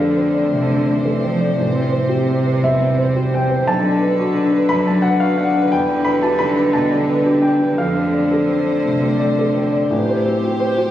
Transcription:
Already playing: F2 D3 A3 C4 D4 C5 D5 F5
0.00 A4
0.17 C4
0.34 D5
0.52 C3 D3
0.70 C4
0.87 D5
0.93 E3
1.05 A4
1.23 C4
1.28 F3
1.41 D5
1.58 A1 C3 G3 C4
1.75 C4
1.92 C5
2.09 G4
2.28 C4
2.46 C5
2.62 E2 E5
2.81 C4
2.99 C5
3.16 G4
3.34 C4 G5
3.50 C5
3.67 B1 D3 F#3 D4 B4 A5
3.84 D4
4.01 B4
4.18 F#4
4.35 D4
4.52 B4
4.69 F#2 B5
4.87 D4 A5
5.02 B4 F#5
5.20 F#4 F5
5.38 D4 F#5
5.56 B4
5.71 E2 D3 G3 G5
5.89 D4
6.05 B4 B5
6.23 G4 A5
6.39 D4 B5
6.57 B4
6.73 B2 A5
6.91 D4
7.09 B4
7.26 G4
7.42 D4 G5
7.61 B4
7.78 F2 D3 A3 C5 F5
7.96 C4
8.14 D5
8.31 A4
8.48 C4
8.66 D5
8.85 C3
9.02 C4
9.19 D5
9.39 A4
9.55 C4
9.73 D5
9.90 A1 A3 G4 C5
10.09 C5
10.26 C4
10.45 G4
10.60 C5
10.78 G4

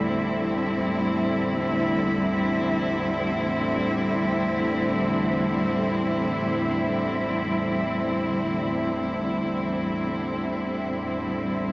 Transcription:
Already playing: A1 E2 A2 D3 G3 A3 C4 E4 A4

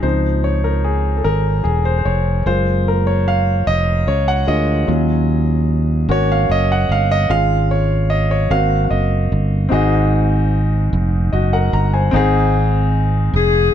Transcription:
0.02 C#2 F3 C4 D#4 C5
0.44 C#5
0.64 A#4
0.84 G#4
1.17 A4
1.24 G#1 A#4
1.64 E1 G#4
1.85 C5
1.98 C5
2.05 F1 C#5
2.46 F#1 G#3 A#3 F4 C5
2.88 A#4
3.07 C#5
3.28 F5
3.67 F1 D#5
4.07 C#2 C#5
4.28 F#5
4.47 D2 G#3 A#3 F4 D#5
4.87 D#2 F#3 C#4 F4
6.09 G#1 A#3 C#4 F#4 C#5
6.32 F5
6.50 F#1 D#5
6.72 F#5
6.89 G1 F5
7.11 D#5
7.29 G#1 G#3 C#4 F4 F5
7.71 C#5
8.10 D#5
8.31 C#5
8.50 G#1 A#3 C4 F#4 F5
8.84 F5
8.91 F#1 D#5
9.32 G1
9.69 G#1 G#2 C4 D#4 F#4 G#4
9.74 D#5
10.93 F1
11.33 F#1 F#4 D#5
11.53 A#4 F#5
11.73 G1 A#5
11.94 C5 G#5
12.11 G#1 G#2 C4 D#4
12.16 G#4
13.34 F1 G#4

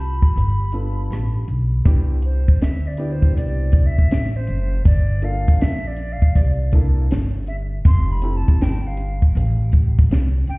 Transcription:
Already playing: C2 G4 B5
0.00 cross-stick
0.22 muted upright bass stroke, kick
0.36 G1, closed hi-hat
0.72 B3 D4 F4 A4, closed hi-hat
1.10 A1, cross-stick, closed hi-hat
1.48 B1, closed hi-hat
1.85 C2 B3 D4 E4 G4, kick, closed hi-hat
2.22 C5, closed hi-hat
2.48 muted upright bass stroke, kick
2.61 D2 E5, snare, closed hi-hat
2.87 D5
2.97 B3 D4 E4 G4, closed hi-hat
3.12 C5
3.22 kick
3.37 C2 D5, closed hi-hat
3.72 kick, closed hi-hat
3.87 E5
3.98 kick
4.11 A1, snare, closed hi-hat
4.36 C5
4.47 F#1, closed hi-hat
4.85 G1 D5, kick, closed hi-hat
5.22 A#3 D4 F4 A4 F5, closed hi-hat
5.48 kick
5.61 A#1 E5, snare, closed hi-hat
5.87 D5
5.96 closed hi-hat
6.13 F5
6.22 muted upright bass stroke, kick
6.35 C2 D5, kick, closed hi-hat
6.72 A#3 D4 E4 A4, kick, closed hi-hat
7.11 G1, snare, closed hi-hat
7.47 E5, closed hi-hat
7.85 F1 C6, kick, closed hi-hat
8.12 B5
8.22 C4 E4 G4 A4, closed hi-hat
8.37 A5
8.48 kick
8.61 G1 G5, snare, closed hi-hat
8.87 F5
8.97 closed hi-hat
9.22 muted upright bass stroke, kick
9.35 A1, closed hi-hat
9.72 kick, closed hi-hat
9.99 kick
10.11 C2, snare, closed hi-hat
10.47 C#2 G5, closed hi-hat

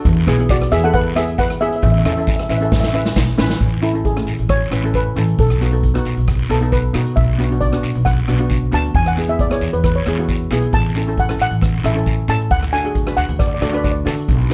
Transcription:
0.05 E2, kick, closed hi-hat, long guiro
0.27 B1 B3 E4 G#4, cross-stick, closed hi-hat
0.39 B3 E4 G#4, closed hi-hat
0.49 F#4 D5, kick, closed hi-hat, short guiro
0.62 cross-stick
0.71 E2 B3 E4 G#4 E5, closed hi-hat, short guiro
0.83 B3 E4 A4 B4 F#5, closed hi-hat
0.94 B4 F#5, kick, closed hi-hat, long guiro
1.16 B3 E4 G#4 E5, cross-stick, closed hi-hat, short guiro
1.28 closed hi-hat
1.38 B4 F#5, kick, closed hi-hat, short guiro
1.50 cross-stick
1.61 B3 E4 G#4 E5, closed hi-hat
1.73 E5, closed hi-hat
1.82 A1 E5, kick, closed hi-hat, long guiro
1.92 E5
1.98 E5
2.05 E2 C#4 E4 A4 E5, cross-stick, closed hi-hat
2.13 E5, closed hi-hat
2.17 C#4 E4 A4 E5
2.27 E5, kick, closed hi-hat, short guiro
2.36 E5, cross-stick
2.42 E5
2.49 A1 C#4 E4 B4 E5, closed hi-hat, short guiro
2.58 C#4 E4 E5, closed hi-hat
2.62 A4 E5
2.72 E5, kick, snare, long guiro
2.80 E5, snare
2.87 E5
2.93 C#4 E4 B4 E5, short guiro
3.06 snare
3.16 B1, kick, snare, short guiro
3.38 A1 C#4 E4 B4, snare
3.50 snare
3.60 A1, kick, closed hi-hat, long guiro
3.81 C#4 E4 A4, closed hi-hat, short guiro
3.94 C#4 E4 A4, closed hi-hat
4.05 G#4, kick, closed hi-hat
4.16 A3 C#4 E4, cross-stick
4.27 A1, closed hi-hat, short guiro
4.39 A1, closed hi-hat
4.49 C#5, kick, cross-stick, closed hi-hat, long guiro
4.71 A1 C#4 E4 B4, cross-stick, closed hi-hat
4.83 C#4 E4 A4, closed hi-hat
4.94 B4, kick, closed hi-hat, short guiro
5.16 A1 C#4 E4 A4, closed hi-hat, short guiro
5.28 closed hi-hat
5.39 B1 A4, kick, closed hi-hat, long guiro
5.50 cross-stick
5.61 B3 D#4 F#4, closed hi-hat, short guiro
5.72 B3 D#4 A4, closed hi-hat
5.83 kick, closed hi-hat
5.94 B3 D#4 F#4, cross-stick
6.05 B1, closed hi-hat, short guiro
6.17 B1, closed hi-hat
6.28 kick, cross-stick, closed hi-hat, long guiro
6.49 B1 B3 D#4 A4, cross-stick, closed hi-hat
6.61 B3 D#4 A4, closed hi-hat
6.72 B4, kick, closed hi-hat, short guiro
6.93 B2 B3 D#4 F#4, cross-stick, closed hi-hat, short guiro
7.06 closed hi-hat
7.16 B1 E5, kick, closed hi-hat, long guiro
7.38 B3 D4 F#4, closed hi-hat, short guiro
7.50 B3 D4 F#4, closed hi-hat
7.61 D5, kick, closed hi-hat
7.72 B3 D4 F#4, cross-stick
7.83 B1, closed hi-hat, short guiro
7.95 B1, closed hi-hat
8.05 F#5, kick, cross-stick, closed hi-hat, long guiro
8.28 B1 B3 D4 F#4, cross-stick, closed hi-hat
8.39 B3 D4 F#4, closed hi-hat
8.50 kick, closed hi-hat, short guiro
8.71 D2 B3 D4 F#4 A5, closed hi-hat, short guiro
8.84 closed hi-hat
8.94 E2 G#5, kick, closed hi-hat, long guiro
9.06 F#5, cross-stick
9.17 B3 E4 G#4, closed hi-hat, short guiro
9.28 B3 E4 G#4 E5, closed hi-hat
9.39 D5, kick, closed hi-hat
9.50 B3 E4 G#4 C#5, cross-stick
9.61 E2, closed hi-hat, short guiro
9.73 E2 B4, closed hi-hat
9.84 B4, kick, cross-stick, closed hi-hat, long guiro
9.96 C#5
10.06 E2 B3 E4 G#4, cross-stick, closed hi-hat
10.18 B3 E4 F#4, closed hi-hat
10.29 kick, closed hi-hat, short guiro
10.51 B1 B3 E4 G#4, cross-stick, closed hi-hat, short guiro
10.63 closed hi-hat
10.73 A1 A5, kick, closed hi-hat, long guiro
10.95 C#4 E4 A4, closed hi-hat, short guiro
11.07 C#4 E4 A4, closed hi-hat
11.18 F#5, kick, closed hi-hat
11.29 C#4 E4 A4, cross-stick
11.39 A1 F#5, closed hi-hat, short guiro
11.51 A1, closed hi-hat
11.61 kick, cross-stick, closed hi-hat, long guiro
11.84 A1 C#4 E4 A4 E5, cross-stick, closed hi-hat
11.95 C#4 E4 A4, closed hi-hat
12.06 kick, closed hi-hat, short guiro
12.28 A2 C#4 E4 A4 A5, closed hi-hat, short guiro
12.40 closed hi-hat
12.51 D2 F#5, kick, closed hi-hat, long guiro
12.62 cross-stick
12.73 D4 F#4 A4 G#5, closed hi-hat, short guiro
12.84 D4 F#4 G#4, closed hi-hat
12.95 kick, closed hi-hat
13.06 D4 F#4 B4, cross-stick
13.17 D2 F#5, closed hi-hat, short guiro
13.29 D2, closed hi-hat
13.39 D5, kick, cross-stick, closed hi-hat, long guiro
13.47 D5
13.54 D5
13.61 D2 D4 F#4 A4 D5, cross-stick, closed hi-hat
13.69 D4 D5
13.73 F#4 B4 D5, closed hi-hat
13.84 D5, kick, closed hi-hat, short guiro
13.92 D5
14.05 D3 D4 F#4 A4, cross-stick, closed hi-hat, short guiro
14.18 closed hi-hat
14.29 B1, kick, closed hi-hat, long guiro
14.50 D#4, closed hi-hat

